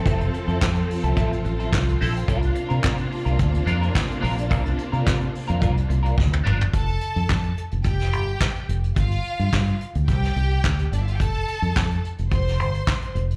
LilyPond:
<<
  \new Staff \with { instrumentName = "String section" } { \time 4/4 \key f \major \tempo 4 = 108 r1 | r1 | r1 | <a' a''>4. r8 <g' g''>4. r8 |
<f' f''>4. r8 <g' g''>4~ <g' g''>16. r32 <d' d''>32 <e' e''>32 <f' f''>32 <g' g''>32 | <a' a''>4. r8 <c'' c'''>4. r8 | }
  \new Staff \with { instrumentName = "Clean electric guitar" } { \time 4/4 \key f \major <c' e' a'>16 r8 <c' e' a'>16 <c' e' a'>16 r8 <c' e' a'>16 <c' e' a'>16 r8 <c' e' a'>16 r8 <c' e' a'>16 r16 | <d' f' bes'>16 r8 <d' f' bes'>16 <d' f' bes'>16 r8 <d' f' bes'>16 r8 <d' f' bes'>16 <d' f' bes'>16 r8 <d' f' bes'>16 r16 | <d' f' bes'>16 r8 <d' f' bes'>16 <d' f' bes'>16 r8 <d' f' bes'>16 <d' f' bes'>16 r8 <d' f' bes'>16 r8 <d' f' bes'>16 r16 | r1 |
r1 | r1 | }
  \new Staff \with { instrumentName = "String section" } { \time 4/4 \key f \major <f c' f' a'>1 | <c bes d'>1~ | <c bes d'>1 | r1 |
r1 | r1 | }
  \new Staff \with { instrumentName = "Fingered electric bass" } { \clef bass \time 4/4 \key f \major f,,8 r16 f,16 f,8 r16 c,16 a,,8 a,,8 c,8 bes,,8 | c,8 r16 c16 c8 r16 c,16 d,8 f,8 r8 bes,,8 | c,8 r16 c16 c8 r16 f,16 c,8 c,8 d,8 g,,8 | f,,8 r16 f,16 f,8 r16 f,,16 f,,8 g,,8 r8 f,,8 |
g,,8 r16 g,16 g,8 r16 d,16 c,8 c,8 d,8 g,,8 | f,,8 r16 f,16 f,8 r16 f,,16 f,,8 g,,8 r8 f,,8 | }
  \new DrumStaff \with { instrumentName = "Drums" } \drummode { \time 4/4 <hh bd>16 hh16 hh16 hh16 <hc bd sn>16 hh16 hho16 hh16 <hh bd>16 hh16 hh16 hh16 <hc bd sn>16 hh16 hho16 hh16 | <hh bd>16 hh16 hh16 hh16 <hc bd sn>16 hh16 hho16 hh16 <hh bd>16 hh16 hh16 hh16 <hc bd sn>16 hh16 hho16 hh16 | <hh bd>16 hh16 hh16 hh16 <hc bd sn>16 hh16 hho16 hh16 <hh bd>16 hh16 hh16 hh16 <bd sn>16 tommh16 toml16 tomfh16 | <hh bd>16 hh16 hh16 hh16 <hc bd sn>16 hh16 hh16 hh16 <hh bd>16 <hh sn>16 hh16 hh16 <hc bd sn>16 hh16 hh16 hh16 |
<hh bd>16 hh16 hh16 hh16 <hc bd sn>16 hh16 hh16 hh16 <hh bd>16 <hh sn>16 hh16 hh16 <hc bd sn>16 hh16 hh16 hh16 | <hh bd>16 hh16 hh16 hh16 <hc bd sn>16 hh16 hh16 hh16 <hh bd>16 <hh sn>16 hh16 hh16 <hc bd sn>16 hh16 hh16 hh16 | }
>>